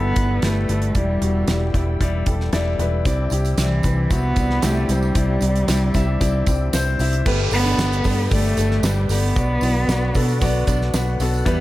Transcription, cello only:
Already playing: B3
0.44 A3
0.96 G3
3.60 E3
4.12 B3
4.64 A3
4.90 G3
7.53 B3
8.32 A3
8.85 G3
9.11 B3

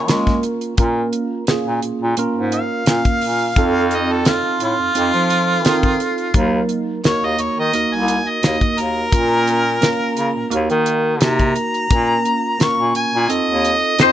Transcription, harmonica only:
Already playing: C#5
2.54 F5
3.95 D#5
4.12 A4
4.28 F4
4.64 F4
7.07 C#5
7.25 D#5
7.41 C#5
7.60 D#5
7.95 G#5
8.29 D#5
8.80 A#4
11.24 A#5
12.62 C#6
12.96 G#5
13.32 D#5

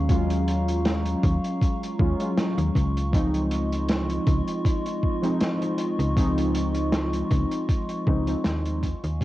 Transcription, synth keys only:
Already playing: F#3 G#3 C#4 F4
0.08 F#3 G#3 C#4 F4
1.99 F#3 G#3 C#4 F4
2.19 F#3 G#3 C#4 F4
3.12 F3 G#3 C4 D#4
5.22 F3 G#3 C4 D#4
6.16 F3 G#3 C4 D#4
8.06 F3 G#3 C4 D#4
8.27 F3 G#3 C4 D#4
9.20 F#3 G#3

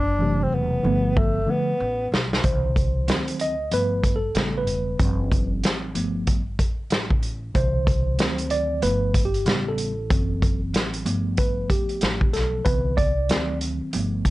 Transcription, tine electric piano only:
0.19 C3 E3 F#3 A3
0.83 D3 F3 A3 B3
1.46 D3 F3 A3 B3
2.43 B2 D3 E3 C5
3.07 D#3 F#3 C4
3.41 D#5
3.72 F3 A3 B3 B4
4.16 A4
4.35 C#3 G3 B3
4.58 B4
4.99 E3 F#3 C4
5.95 F3 A3 B3
7.54 B2 D3 E3 C5
8.18 D#3 F#3 C4
8.51 D5
8.82 F3 A3 B3 B4
9.25 G4
9.46 C#3 G3 B3
9.68 A4
10.10 E3 F#3 C4
11.06 F3 A3 B3
11.38 B4
11.70 G4
12.33 A4
12.65 D3 E3 B3 B4
12.97 D5
13.29 D#3 F#3 C4
13.93 F3 A3 B3

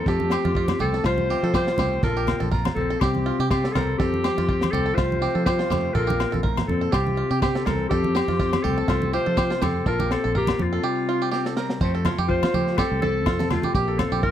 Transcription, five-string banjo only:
0.08 A4
0.32 G4
0.45 F4
0.56 F4
0.80 G4
0.94 A4
1.06 F4
1.30 G4
1.44 A4
1.54 G4
1.68 F4
1.79 G4
2.04 A4
2.17 G4
2.40 A4
2.51 A#4
2.90 A4
3.02 G4
3.26 F4
3.40 G4
3.51 G4
3.65 A4
3.75 A#4
4.00 A4
4.24 G4
4.38 F4
4.49 F4
4.73 G4
4.86 A4
4.98 F4
5.22 G4
5.35 A4
5.46 G4
5.59 F4
5.70 G4
5.95 A4
6.07 G4
6.32 A4
6.43 A#4
6.81 A4
6.92 G4
7.17 F4
7.31 G4
7.42 G4
7.55 A4
7.66 A#4
7.91 A4
8.15 G4
8.28 F4
8.40 F4
8.64 G4
8.78 A4
8.88 F4
9.13 G4
9.26 A4
9.37 G4
9.50 F4
9.62 G4
9.86 A4
10.00 G4
10.24 A4
10.35 A#4
10.73 A4
10.84 G4
11.09 F4
11.22 G4
11.31 G4
11.46 A4
11.57 A#4
11.81 C5
11.95 A4
12.06 F4
12.18 G4
12.43 F4
12.54 G4
12.79 G4
13.03 A4
13.27 F4
13.39 A4
13.64 G4
13.75 G4
13.88 A4
14.12 G4
14.23 F4

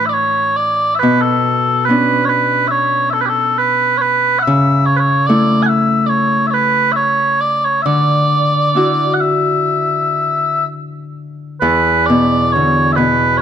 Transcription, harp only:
Already playing: A2 E3 A3 D4
1.03 B2
1.89 B3 C#4 D4
4.47 C#3
5.29 A3 E4
7.86 D3
8.75 D4 E4 F#4
11.62 E2
12.10 B2
12.56 D3
12.98 B2

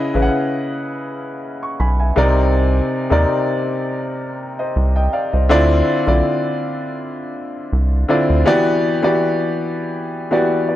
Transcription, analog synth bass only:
0.15 A1
1.80 B1
2.17 C2
3.11 D#2
4.76 C2
5.34 C2
5.51 D2
6.08 B1
7.73 C2
8.30 D2

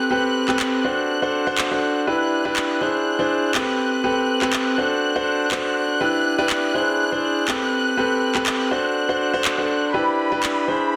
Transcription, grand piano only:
0.10 C4 G4 A4 B4
0.48 C4 G4 A4 B4
0.84 D4 F#4 A4 C5
1.22 D4 F#4 A4 C5
1.47 D4 F#4 A4 C5
1.71 D4 F#4 A4 C5
2.07 D4 E4 G4 B4
2.45 D4 E4 G4 B4
2.81 D4 E4 G#4 C5
3.19 D4 E4 G#4 C5
3.55 C4 G4 A4 B4
4.04 C4 G4 A4 B4
4.42 C4 G4 A4 B4
4.78 D4 F#4 A4 C5
5.16 D4 F#4 A4 C5
5.52 D4 F#4 A4 C5
6.01 D4 E4 G4 B4
6.38 D4 E4 G4 B4
6.74 D4 E4 G#4 C5
7.12 D4 E4 G#4 C5
7.48 C4 G4 A4 B4
7.97 C4 G4 A4 B4
8.35 C4 G4 A4 B4
8.71 D4 F#4 A4 C5
9.09 D4 F#4 A4 C5
9.33 D4 F#4 A4 C5
9.58 D4 F#4 A4 C5
9.94 D4 E4 G4 B4
10.32 D4 E4 G4 B4
10.68 D4 E4 G#4 C5

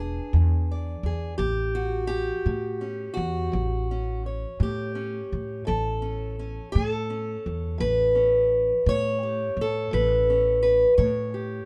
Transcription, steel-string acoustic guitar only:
Already playing: E3 D4 B4
0.00 G#4
0.34 E2
0.71 D5
1.06 G#4
1.38 A2 G4
1.75 F#4
2.07 G4
2.47 A2
2.81 C#4
3.14 F#4
3.52 A2
3.91 C#4
4.26 C#5
4.60 A2 G4
4.95 C#4
5.65 A2 A4
6.02 C#4
6.39 C#4
6.72 A2 G#4
6.89 A4
7.10 C#4
7.78 A2 B4
8.15 C#4
8.86 A2 C#5
9.23 G4
9.61 A4
9.91 A2 B4
10.30 C#4
10.63 B4
10.98 A2 C#5
11.34 G4

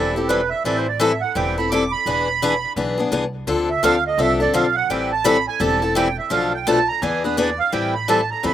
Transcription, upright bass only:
Already playing: E1
0.64 A1
1.35 E1
2.06 E1
2.76 B1
3.11 C2
3.47 D2
3.83 D2
4.18 C2
4.54 B1
4.90 A1
5.60 E1
6.31 B1
7.02 E2
7.73 A1
8.44 E2

